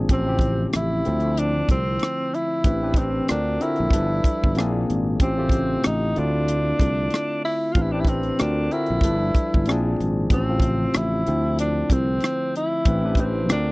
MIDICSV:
0, 0, Header, 1, 6, 480
1, 0, Start_track
1, 0, Key_signature, 0, "minor"
1, 0, Tempo, 638298
1, 68, Time_signature, 4, 2, 24, 8
1, 10316, End_track
2, 0, Start_track
2, 0, Title_t, "Tenor saxophone"
2, 0, Program_c, 0, 66
2, 97, Note_on_c, 0, 60, 84
2, 533, Note_off_c, 0, 60, 0
2, 573, Note_on_c, 0, 64, 94
2, 1046, Note_on_c, 0, 62, 91
2, 1057, Note_off_c, 0, 64, 0
2, 1277, Note_off_c, 0, 62, 0
2, 1285, Note_on_c, 0, 60, 87
2, 1764, Note_on_c, 0, 64, 97
2, 1775, Note_off_c, 0, 60, 0
2, 2243, Note_on_c, 0, 60, 78
2, 2254, Note_off_c, 0, 64, 0
2, 2476, Note_off_c, 0, 60, 0
2, 2483, Note_on_c, 0, 62, 83
2, 2723, Note_on_c, 0, 64, 92
2, 2734, Note_off_c, 0, 62, 0
2, 3676, Note_off_c, 0, 64, 0
2, 3929, Note_on_c, 0, 60, 80
2, 4412, Note_on_c, 0, 63, 87
2, 4423, Note_off_c, 0, 60, 0
2, 4650, Note_on_c, 0, 62, 90
2, 4661, Note_off_c, 0, 63, 0
2, 5596, Note_off_c, 0, 62, 0
2, 5601, Note_on_c, 0, 64, 91
2, 5811, Note_on_c, 0, 65, 72
2, 5822, Note_off_c, 0, 64, 0
2, 5879, Note_on_c, 0, 64, 76
2, 5890, Note_off_c, 0, 65, 0
2, 5956, Note_on_c, 0, 62, 74
2, 5967, Note_off_c, 0, 64, 0
2, 6019, Note_on_c, 0, 64, 82
2, 6030, Note_off_c, 0, 62, 0
2, 6082, Note_on_c, 0, 60, 77
2, 6093, Note_off_c, 0, 64, 0
2, 6317, Note_on_c, 0, 62, 81
2, 6328, Note_off_c, 0, 60, 0
2, 6560, Note_on_c, 0, 64, 92
2, 6571, Note_off_c, 0, 62, 0
2, 7514, Note_off_c, 0, 64, 0
2, 7767, Note_on_c, 0, 60, 82
2, 8249, Note_on_c, 0, 64, 93
2, 8261, Note_off_c, 0, 60, 0
2, 8719, Note_off_c, 0, 64, 0
2, 8724, Note_on_c, 0, 62, 88
2, 8967, Note_on_c, 0, 60, 91
2, 8978, Note_off_c, 0, 62, 0
2, 9438, Note_off_c, 0, 60, 0
2, 9449, Note_on_c, 0, 64, 90
2, 9929, Note_on_c, 0, 60, 76
2, 9940, Note_off_c, 0, 64, 0
2, 10159, Note_off_c, 0, 60, 0
2, 10167, Note_on_c, 0, 62, 93
2, 10316, Note_off_c, 0, 62, 0
2, 10316, End_track
3, 0, Start_track
3, 0, Title_t, "Tine electric piano"
3, 0, Program_c, 1, 4
3, 0, Control_c, 1, 64, 127
3, 0, Note_on_c, 1, 46, 81
3, 0, Note_on_c, 1, 53, 74
3, 0, Note_on_c, 1, 60, 75
3, 0, Note_on_c, 1, 62, 77
3, 0, Note_on_c, 1, 68, 95
3, 69, Note_on_c, 1, 45, 64
3, 73, Note_off_c, 1, 53, 0
3, 73, Note_on_c, 1, 53, 58
3, 77, Control_c, 1, 64, 0
3, 78, Note_off_c, 1, 46, 0
3, 78, Note_off_c, 1, 60, 0
3, 78, Note_on_c, 1, 60, 55
3, 79, Note_off_c, 1, 68, 0
3, 79, Note_on_c, 1, 61, 57
3, 82, Note_on_c, 1, 67, 73
3, 83, Note_off_c, 1, 62, 0
3, 191, Note_off_c, 1, 45, 0
3, 193, Note_off_c, 1, 53, 0
3, 195, Control_c, 1, 64, 127
3, 196, Note_off_c, 1, 60, 0
3, 196, Note_off_c, 1, 61, 0
3, 198, Note_off_c, 1, 67, 0
3, 203, Note_on_c, 1, 45, 58
3, 205, Note_on_c, 1, 53, 57
3, 208, Note_on_c, 1, 60, 58
3, 213, Note_on_c, 1, 49, 55
3, 215, Note_on_c, 1, 67, 65
3, 763, Note_off_c, 1, 45, 0
3, 764, Note_off_c, 1, 53, 0
3, 765, Note_off_c, 1, 60, 0
3, 768, Note_off_c, 1, 49, 0
3, 769, Note_off_c, 1, 67, 0
3, 792, Note_on_c, 1, 57, 61
3, 793, Note_on_c, 1, 50, 66
3, 799, Note_on_c, 1, 60, 62
3, 800, Control_c, 1, 64, 0
3, 801, Note_on_c, 1, 64, 59
3, 804, Note_on_c, 1, 53, 72
3, 915, Control_c, 1, 64, 127
3, 1704, Note_off_c, 1, 57, 0
3, 1705, Note_off_c, 1, 50, 0
3, 1708, Note_off_c, 1, 60, 0
3, 1708, Note_off_c, 1, 64, 0
3, 1710, Note_off_c, 1, 53, 0
3, 1990, Note_on_c, 1, 45, 65
3, 1991, Note_on_c, 1, 52, 57
3, 1995, Note_on_c, 1, 60, 58
3, 1998, Note_on_c, 1, 62, 56
3, 2000, Control_c, 1, 64, 0
3, 2001, Note_on_c, 1, 67, 58
3, 2002, Note_on_c, 1, 71, 75
3, 2111, Note_off_c, 1, 45, 0
3, 2112, Note_off_c, 1, 52, 0
3, 2114, Note_off_c, 1, 60, 0
3, 2115, Note_off_c, 1, 62, 0
3, 2117, Note_off_c, 1, 67, 0
3, 2118, Note_off_c, 1, 71, 0
3, 2123, Note_on_c, 1, 45, 60
3, 2125, Note_on_c, 1, 52, 55
3, 2129, Note_on_c, 1, 60, 55
3, 2131, Note_on_c, 1, 62, 60
3, 2133, Note_on_c, 1, 67, 55
3, 2135, Note_on_c, 1, 71, 66
3, 2148, Control_c, 1, 64, 127
3, 2468, Note_off_c, 1, 60, 0
3, 2471, Note_off_c, 1, 45, 0
3, 2472, Note_off_c, 1, 52, 0
3, 2473, Note_on_c, 1, 50, 69
3, 2475, Note_off_c, 1, 62, 0
3, 2476, Note_off_c, 1, 67, 0
3, 2477, Note_on_c, 1, 60, 61
3, 2478, Note_off_c, 1, 71, 0
3, 2478, Control_c, 1, 64, 0
3, 2479, Note_on_c, 1, 65, 60
3, 2484, Note_on_c, 1, 66, 61
3, 2488, Note_on_c, 1, 70, 77
3, 2592, Control_c, 1, 64, 127
3, 2699, Note_off_c, 1, 50, 0
3, 2701, Note_off_c, 1, 60, 0
3, 2702, Note_off_c, 1, 65, 0
3, 2705, Note_off_c, 1, 66, 0
3, 2707, Note_off_c, 1, 70, 0
3, 2714, Note_on_c, 1, 50, 67
3, 2716, Note_on_c, 1, 60, 60
3, 2718, Note_on_c, 1, 62, 58
3, 2724, Note_on_c, 1, 66, 60
3, 2725, Note_on_c, 1, 70, 69
3, 2944, Note_off_c, 1, 62, 0
3, 2951, Note_off_c, 1, 50, 0
3, 2951, Note_on_c, 1, 55, 72
3, 2952, Note_off_c, 1, 60, 0
3, 2953, Note_on_c, 1, 62, 65
3, 2954, Note_on_c, 1, 64, 65
3, 2956, Note_off_c, 1, 66, 0
3, 2957, Note_off_c, 1, 70, 0
3, 2957, Note_on_c, 1, 53, 64
3, 2958, Control_c, 1, 64, 0
3, 2960, Note_on_c, 1, 69, 62
3, 2962, Note_on_c, 1, 71, 79
3, 3113, Control_c, 1, 64, 127
3, 3407, Note_off_c, 1, 55, 0
3, 3408, Note_off_c, 1, 62, 0
3, 3408, Note_off_c, 1, 64, 0
3, 3410, Note_off_c, 1, 53, 0
3, 3411, Note_off_c, 1, 69, 0
3, 3412, Note_off_c, 1, 71, 0
3, 3431, Note_on_c, 1, 46, 85
3, 3435, Note_on_c, 1, 58, 81
3, 3437, Control_c, 1, 64, 0
3, 3439, Note_on_c, 1, 60, 78
3, 3441, Note_on_c, 1, 62, 73
3, 3448, Note_on_c, 1, 68, 93
3, 3565, Control_c, 1, 64, 127
3, 3887, Note_off_c, 1, 46, 0
3, 3889, Note_off_c, 1, 58, 0
3, 3891, Note_off_c, 1, 60, 0
3, 3892, Note_off_c, 1, 62, 0
3, 3895, Note_off_c, 1, 68, 0
3, 3914, Note_on_c, 1, 45, 63
3, 3915, Note_on_c, 1, 57, 57
3, 3917, Control_c, 1, 64, 0
3, 3919, Note_on_c, 1, 60, 59
3, 3920, Note_on_c, 1, 61, 61
3, 3923, Note_on_c, 1, 65, 57
3, 3927, Note_on_c, 1, 67, 73
3, 4032, Note_off_c, 1, 45, 0
3, 4034, Note_off_c, 1, 57, 0
3, 4036, Note_off_c, 1, 60, 0
3, 4037, Note_off_c, 1, 61, 0
3, 4038, Note_off_c, 1, 65, 0
3, 4039, Control_c, 1, 64, 127
3, 4040, Note_off_c, 1, 67, 0
3, 4041, Note_on_c, 1, 45, 61
3, 4045, Note_on_c, 1, 57, 58
3, 4049, Note_on_c, 1, 60, 58
3, 4051, Note_on_c, 1, 49, 55
3, 4053, Note_on_c, 1, 65, 58
3, 4055, Note_on_c, 1, 67, 72
3, 4601, Note_off_c, 1, 45, 0
3, 4604, Note_off_c, 1, 57, 0
3, 4605, Note_off_c, 1, 60, 0
3, 4607, Note_off_c, 1, 49, 0
3, 4607, Note_off_c, 1, 65, 0
3, 4609, Note_off_c, 1, 67, 0
3, 4634, Note_on_c, 1, 50, 66
3, 4634, Note_on_c, 1, 57, 60
3, 4639, Control_c, 1, 64, 0
3, 4640, Note_on_c, 1, 60, 61
3, 4641, Note_on_c, 1, 64, 60
3, 4647, Note_on_c, 1, 65, 74
3, 4779, Control_c, 1, 64, 127
3, 5545, Note_off_c, 1, 50, 0
3, 5545, Note_off_c, 1, 57, 0
3, 5548, Note_off_c, 1, 60, 0
3, 5549, Note_off_c, 1, 64, 0
3, 5552, Note_off_c, 1, 65, 0
3, 5833, Note_on_c, 1, 45, 61
3, 5835, Note_on_c, 1, 52, 59
3, 5837, Control_c, 1, 64, 0
3, 5838, Note_on_c, 1, 60, 58
3, 5842, Note_on_c, 1, 62, 60
3, 5842, Note_on_c, 1, 67, 57
3, 5845, Note_on_c, 1, 71, 70
3, 5953, Note_off_c, 1, 45, 0
3, 5954, Note_off_c, 1, 52, 0
3, 5956, Note_off_c, 1, 60, 0
3, 5957, Note_off_c, 1, 62, 0
3, 5958, Note_off_c, 1, 67, 0
3, 5959, Note_off_c, 1, 71, 0
3, 5965, Note_on_c, 1, 45, 57
3, 5967, Note_on_c, 1, 52, 57
3, 5968, Note_on_c, 1, 60, 56
3, 5972, Note_on_c, 1, 62, 57
3, 5977, Note_on_c, 1, 67, 57
3, 5979, Note_on_c, 1, 71, 63
3, 5989, Control_c, 1, 64, 127
3, 6305, Note_off_c, 1, 60, 0
3, 6309, Note_on_c, 1, 50, 66
3, 6312, Note_off_c, 1, 45, 0
3, 6313, Note_off_c, 1, 52, 0
3, 6314, Note_on_c, 1, 60, 60
3, 6316, Note_off_c, 1, 62, 0
3, 6316, Note_on_c, 1, 65, 64
3, 6318, Note_off_c, 1, 67, 0
3, 6318, Control_c, 1, 64, 0
3, 6318, Note_on_c, 1, 66, 61
3, 6319, Note_off_c, 1, 71, 0
3, 6324, Note_on_c, 1, 70, 72
3, 6426, Control_c, 1, 64, 127
3, 6537, Note_off_c, 1, 50, 0
3, 6540, Note_off_c, 1, 60, 0
3, 6541, Note_off_c, 1, 65, 0
3, 6542, Note_off_c, 1, 66, 0
3, 6545, Note_off_c, 1, 70, 0
3, 6554, Note_on_c, 1, 50, 64
3, 6556, Note_on_c, 1, 60, 59
3, 6560, Note_on_c, 1, 62, 58
3, 6565, Note_on_c, 1, 66, 59
3, 6568, Note_on_c, 1, 70, 68
3, 6786, Note_off_c, 1, 62, 0
3, 6791, Note_off_c, 1, 50, 0
3, 6793, Note_off_c, 1, 60, 0
3, 6793, Note_on_c, 1, 55, 70
3, 6795, Note_on_c, 1, 62, 64
3, 6797, Note_off_c, 1, 66, 0
3, 6798, Note_off_c, 1, 70, 0
3, 6798, Note_on_c, 1, 64, 62
3, 6799, Note_on_c, 1, 53, 62
3, 6800, Control_c, 1, 64, 0
3, 6804, Note_on_c, 1, 69, 62
3, 6804, Note_on_c, 1, 71, 76
3, 6929, Control_c, 1, 64, 127
3, 7248, Note_off_c, 1, 55, 0
3, 7249, Note_off_c, 1, 62, 0
3, 7250, Note_off_c, 1, 64, 0
3, 7251, Note_off_c, 1, 53, 0
3, 7253, Note_off_c, 1, 69, 0
3, 7253, Note_off_c, 1, 71, 0
3, 7274, Note_on_c, 1, 46, 79
3, 7278, Note_on_c, 1, 53, 76
3, 7279, Note_on_c, 1, 60, 75
3, 7280, Control_c, 1, 64, 0
3, 7283, Note_on_c, 1, 62, 76
3, 7287, Note_on_c, 1, 68, 94
3, 7394, Control_c, 1, 64, 127
3, 7728, Note_off_c, 1, 46, 0
3, 7730, Note_off_c, 1, 53, 0
3, 7731, Note_off_c, 1, 60, 0
3, 7733, Note_off_c, 1, 62, 0
3, 7735, Note_off_c, 1, 68, 0
3, 7753, Note_on_c, 1, 45, 67
3, 7757, Note_on_c, 1, 53, 58
3, 7758, Control_c, 1, 64, 0
3, 7760, Note_on_c, 1, 60, 55
3, 7765, Note_on_c, 1, 61, 62
3, 7767, Note_on_c, 1, 67, 75
3, 7873, Note_off_c, 1, 45, 0
3, 7875, Note_off_c, 1, 53, 0
3, 7877, Note_off_c, 1, 60, 0
3, 7879, Note_off_c, 1, 61, 0
3, 7880, Note_off_c, 1, 67, 0
3, 7885, Note_on_c, 1, 45, 63
3, 7888, Note_on_c, 1, 53, 58
3, 7891, Note_on_c, 1, 60, 57
3, 7895, Note_on_c, 1, 49, 55
3, 7897, Note_on_c, 1, 65, 73
3, 7898, Control_c, 1, 64, 127
3, 8443, Note_off_c, 1, 45, 0
3, 8445, Note_off_c, 1, 53, 0
3, 8446, Note_off_c, 1, 60, 0
3, 8448, Note_off_c, 1, 49, 0
3, 8449, Note_off_c, 1, 65, 0
3, 8475, Note_on_c, 1, 50, 67
3, 8479, Note_on_c, 1, 57, 60
3, 8480, Control_c, 1, 64, 0
3, 8483, Note_on_c, 1, 60, 61
3, 8485, Note_on_c, 1, 64, 60
3, 8488, Note_on_c, 1, 53, 73
3, 8590, Control_c, 1, 64, 127
3, 9386, Note_off_c, 1, 50, 0
3, 9388, Note_off_c, 1, 57, 0
3, 9390, Note_off_c, 1, 60, 0
3, 9391, Note_off_c, 1, 64, 0
3, 9392, Note_off_c, 1, 53, 0
3, 9679, Control_c, 1, 64, 0
3, 9679, Note_on_c, 1, 45, 67
3, 9679, Note_on_c, 1, 52, 60
3, 9681, Note_on_c, 1, 60, 62
3, 9685, Note_on_c, 1, 62, 59
3, 9690, Note_on_c, 1, 67, 56
3, 9693, Note_on_c, 1, 71, 75
3, 9795, Note_off_c, 1, 45, 0
3, 9796, Note_off_c, 1, 52, 0
3, 9797, Note_off_c, 1, 60, 0
3, 9799, Note_off_c, 1, 62, 0
3, 9801, Note_off_c, 1, 67, 0
3, 9803, Note_off_c, 1, 71, 0
3, 9804, Note_on_c, 1, 45, 64
3, 9806, Note_on_c, 1, 52, 57
3, 9807, Note_on_c, 1, 60, 56
3, 9810, Control_c, 1, 64, 127
3, 9812, Note_on_c, 1, 62, 57
3, 9813, Note_on_c, 1, 67, 62
3, 9819, Note_on_c, 1, 71, 72
3, 10147, Note_off_c, 1, 60, 0
3, 10152, Note_off_c, 1, 45, 0
3, 10153, Note_off_c, 1, 52, 0
3, 10153, Note_on_c, 1, 50, 70
3, 10156, Note_off_c, 1, 62, 0
3, 10156, Note_off_c, 1, 67, 0
3, 10156, Note_on_c, 1, 60, 60
3, 10159, Note_off_c, 1, 71, 0
3, 10160, Control_c, 1, 64, 0
3, 10160, Note_on_c, 1, 65, 67
3, 10161, Note_on_c, 1, 66, 62
3, 10166, Note_on_c, 1, 70, 73
3, 10301, Control_c, 1, 64, 127
3, 10316, Note_off_c, 1, 50, 0
3, 10316, Note_off_c, 1, 60, 0
3, 10316, Note_off_c, 1, 65, 0
3, 10316, Note_off_c, 1, 66, 0
3, 10316, Note_off_c, 1, 70, 0
3, 10316, End_track
4, 0, Start_track
4, 0, Title_t, "Fretless electric bass"
4, 0, Program_c, 2, 35
4, 78, Note_on_c, 2, 33, 87
4, 487, Note_off_c, 2, 33, 0
4, 565, Note_on_c, 2, 33, 75
4, 765, Note_off_c, 2, 33, 0
4, 808, Note_on_c, 2, 38, 88
4, 1213, Note_off_c, 2, 38, 0
4, 1278, Note_on_c, 2, 36, 80
4, 1481, Note_off_c, 2, 36, 0
4, 1996, Note_on_c, 2, 33, 97
4, 2406, Note_off_c, 2, 33, 0
4, 2488, Note_on_c, 2, 38, 80
4, 2686, Note_off_c, 2, 38, 0
4, 2857, Note_on_c, 2, 34, 75
4, 2942, Note_off_c, 2, 34, 0
4, 2946, Note_on_c, 2, 31, 81
4, 3154, Note_off_c, 2, 31, 0
4, 3345, Note_on_c, 2, 31, 85
4, 3450, Note_off_c, 2, 31, 0
4, 3450, Note_on_c, 2, 34, 94
4, 3648, Note_off_c, 2, 34, 0
4, 3686, Note_on_c, 2, 32, 80
4, 3886, Note_off_c, 2, 32, 0
4, 3919, Note_on_c, 2, 33, 86
4, 4328, Note_off_c, 2, 33, 0
4, 4411, Note_on_c, 2, 33, 75
4, 4608, Note_off_c, 2, 33, 0
4, 4648, Note_on_c, 2, 38, 82
4, 5053, Note_off_c, 2, 38, 0
4, 5118, Note_on_c, 2, 36, 75
4, 5321, Note_off_c, 2, 36, 0
4, 5836, Note_on_c, 2, 33, 89
4, 6247, Note_off_c, 2, 33, 0
4, 6325, Note_on_c, 2, 38, 83
4, 6525, Note_off_c, 2, 38, 0
4, 6693, Note_on_c, 2, 34, 77
4, 6780, Note_off_c, 2, 34, 0
4, 6784, Note_on_c, 2, 31, 82
4, 6993, Note_off_c, 2, 31, 0
4, 7186, Note_on_c, 2, 31, 83
4, 7282, Note_off_c, 2, 31, 0
4, 7282, Note_on_c, 2, 34, 93
4, 7483, Note_off_c, 2, 34, 0
4, 7524, Note_on_c, 2, 32, 84
4, 7724, Note_off_c, 2, 32, 0
4, 7755, Note_on_c, 2, 33, 90
4, 8166, Note_off_c, 2, 33, 0
4, 8241, Note_on_c, 2, 33, 76
4, 8443, Note_off_c, 2, 33, 0
4, 8482, Note_on_c, 2, 38, 90
4, 8890, Note_off_c, 2, 38, 0
4, 8956, Note_on_c, 2, 36, 82
4, 9160, Note_off_c, 2, 36, 0
4, 9677, Note_on_c, 2, 33, 104
4, 10166, Note_off_c, 2, 33, 0
4, 10166, Note_on_c, 2, 38, 89
4, 10316, Note_off_c, 2, 38, 0
4, 10316, End_track
5, 0, Start_track
5, 0, Title_t, "Muted fretless electric bass strokes"
5, 3200, Note_on_c, 9, 29, 40
5, 3275, Note_off_c, 9, 29, 0
5, 10316, End_track
6, 0, Start_track
6, 0, Title_t, "Drums"
6, 69, Note_on_c, 9, 36, 96
6, 69, Note_on_c, 9, 42, 70
6, 144, Note_off_c, 9, 42, 0
6, 145, Note_off_c, 9, 36, 0
6, 291, Note_on_c, 9, 36, 81
6, 308, Note_on_c, 9, 42, 55
6, 366, Note_off_c, 9, 36, 0
6, 383, Note_off_c, 9, 42, 0
6, 548, Note_on_c, 9, 42, 71
6, 553, Note_on_c, 9, 37, 97
6, 623, Note_off_c, 9, 42, 0
6, 628, Note_off_c, 9, 37, 0
6, 791, Note_on_c, 9, 42, 48
6, 866, Note_off_c, 9, 42, 0
6, 903, Note_on_c, 9, 42, 31
6, 978, Note_off_c, 9, 42, 0
6, 1033, Note_on_c, 9, 42, 81
6, 1108, Note_off_c, 9, 42, 0
6, 1268, Note_on_c, 9, 36, 80
6, 1275, Note_on_c, 9, 42, 58
6, 1343, Note_off_c, 9, 36, 0
6, 1351, Note_off_c, 9, 42, 0
6, 1500, Note_on_c, 9, 42, 55
6, 1526, Note_on_c, 9, 37, 96
6, 1575, Note_off_c, 9, 42, 0
6, 1601, Note_off_c, 9, 37, 0
6, 1763, Note_on_c, 9, 42, 50
6, 1838, Note_off_c, 9, 42, 0
6, 1987, Note_on_c, 9, 36, 94
6, 1989, Note_on_c, 9, 42, 68
6, 2063, Note_off_c, 9, 36, 0
6, 2064, Note_off_c, 9, 42, 0
6, 2210, Note_on_c, 9, 36, 84
6, 2227, Note_on_c, 9, 42, 58
6, 2285, Note_off_c, 9, 36, 0
6, 2302, Note_off_c, 9, 42, 0
6, 2469, Note_on_c, 9, 42, 68
6, 2475, Note_on_c, 9, 37, 98
6, 2545, Note_off_c, 9, 42, 0
6, 2550, Note_off_c, 9, 37, 0
6, 2714, Note_on_c, 9, 42, 51
6, 2789, Note_off_c, 9, 42, 0
6, 2827, Note_on_c, 9, 42, 30
6, 2902, Note_off_c, 9, 42, 0
6, 2936, Note_on_c, 9, 36, 80
6, 2957, Note_on_c, 9, 42, 83
6, 3012, Note_off_c, 9, 36, 0
6, 3032, Note_off_c, 9, 42, 0
6, 3189, Note_on_c, 9, 36, 79
6, 3198, Note_on_c, 9, 42, 61
6, 3264, Note_off_c, 9, 36, 0
6, 3273, Note_off_c, 9, 42, 0
6, 3336, Note_on_c, 9, 36, 83
6, 3411, Note_off_c, 9, 36, 0
6, 3422, Note_on_c, 9, 42, 53
6, 3448, Note_on_c, 9, 37, 97
6, 3497, Note_off_c, 9, 42, 0
6, 3523, Note_off_c, 9, 37, 0
6, 3684, Note_on_c, 9, 42, 52
6, 3759, Note_off_c, 9, 42, 0
6, 3909, Note_on_c, 9, 36, 100
6, 3911, Note_on_c, 9, 42, 72
6, 3984, Note_off_c, 9, 36, 0
6, 3986, Note_off_c, 9, 42, 0
6, 4131, Note_on_c, 9, 36, 77
6, 4148, Note_on_c, 9, 42, 56
6, 4206, Note_off_c, 9, 36, 0
6, 4223, Note_off_c, 9, 42, 0
6, 4389, Note_on_c, 9, 42, 71
6, 4394, Note_on_c, 9, 37, 97
6, 4464, Note_off_c, 9, 42, 0
6, 4469, Note_off_c, 9, 37, 0
6, 4634, Note_on_c, 9, 42, 49
6, 4709, Note_off_c, 9, 42, 0
6, 4875, Note_on_c, 9, 42, 81
6, 4950, Note_off_c, 9, 42, 0
6, 5110, Note_on_c, 9, 36, 80
6, 5119, Note_on_c, 9, 42, 62
6, 5185, Note_off_c, 9, 36, 0
6, 5195, Note_off_c, 9, 42, 0
6, 5343, Note_on_c, 9, 42, 54
6, 5369, Note_on_c, 9, 37, 89
6, 5418, Note_off_c, 9, 42, 0
6, 5444, Note_off_c, 9, 37, 0
6, 5606, Note_on_c, 9, 46, 36
6, 5681, Note_off_c, 9, 46, 0
6, 5828, Note_on_c, 9, 36, 96
6, 5828, Note_on_c, 9, 42, 70
6, 5903, Note_off_c, 9, 36, 0
6, 5904, Note_off_c, 9, 42, 0
6, 6050, Note_on_c, 9, 36, 80
6, 6069, Note_on_c, 9, 42, 59
6, 6125, Note_off_c, 9, 36, 0
6, 6144, Note_off_c, 9, 42, 0
6, 6191, Note_on_c, 9, 42, 31
6, 6266, Note_off_c, 9, 42, 0
6, 6309, Note_on_c, 9, 42, 66
6, 6314, Note_on_c, 9, 37, 100
6, 6384, Note_off_c, 9, 42, 0
6, 6389, Note_off_c, 9, 37, 0
6, 6553, Note_on_c, 9, 42, 51
6, 6628, Note_off_c, 9, 42, 0
6, 6665, Note_on_c, 9, 42, 30
6, 6740, Note_off_c, 9, 42, 0
6, 6775, Note_on_c, 9, 36, 78
6, 6795, Note_on_c, 9, 42, 84
6, 6850, Note_off_c, 9, 36, 0
6, 6870, Note_off_c, 9, 42, 0
6, 7028, Note_on_c, 9, 36, 81
6, 7037, Note_on_c, 9, 42, 61
6, 7103, Note_off_c, 9, 36, 0
6, 7112, Note_off_c, 9, 42, 0
6, 7175, Note_on_c, 9, 36, 82
6, 7250, Note_off_c, 9, 36, 0
6, 7261, Note_on_c, 9, 42, 55
6, 7288, Note_on_c, 9, 37, 96
6, 7337, Note_off_c, 9, 42, 0
6, 7363, Note_off_c, 9, 37, 0
6, 7523, Note_on_c, 9, 42, 50
6, 7599, Note_off_c, 9, 42, 0
6, 7747, Note_on_c, 9, 36, 99
6, 7748, Note_on_c, 9, 42, 66
6, 7822, Note_off_c, 9, 36, 0
6, 7823, Note_off_c, 9, 42, 0
6, 7968, Note_on_c, 9, 36, 83
6, 7985, Note_on_c, 9, 42, 60
6, 8043, Note_off_c, 9, 36, 0
6, 8060, Note_off_c, 9, 42, 0
6, 8226, Note_on_c, 9, 42, 73
6, 8231, Note_on_c, 9, 37, 107
6, 8301, Note_off_c, 9, 42, 0
6, 8306, Note_off_c, 9, 37, 0
6, 8471, Note_on_c, 9, 42, 52
6, 8546, Note_off_c, 9, 42, 0
6, 8713, Note_on_c, 9, 42, 85
6, 8788, Note_off_c, 9, 42, 0
6, 8947, Note_on_c, 9, 36, 83
6, 8954, Note_on_c, 9, 42, 64
6, 9022, Note_off_c, 9, 36, 0
6, 9029, Note_off_c, 9, 42, 0
6, 9178, Note_on_c, 9, 42, 54
6, 9205, Note_on_c, 9, 37, 94
6, 9253, Note_off_c, 9, 42, 0
6, 9280, Note_off_c, 9, 37, 0
6, 9441, Note_on_c, 9, 42, 54
6, 9516, Note_off_c, 9, 42, 0
6, 9666, Note_on_c, 9, 36, 101
6, 9667, Note_on_c, 9, 42, 69
6, 9742, Note_off_c, 9, 36, 0
6, 9742, Note_off_c, 9, 42, 0
6, 9889, Note_on_c, 9, 36, 81
6, 9905, Note_on_c, 9, 42, 59
6, 9965, Note_off_c, 9, 36, 0
6, 9980, Note_off_c, 9, 42, 0
6, 10146, Note_on_c, 9, 42, 72
6, 10151, Note_on_c, 9, 37, 105
6, 10221, Note_off_c, 9, 42, 0
6, 10226, Note_off_c, 9, 37, 0
6, 10316, End_track
0, 0, End_of_file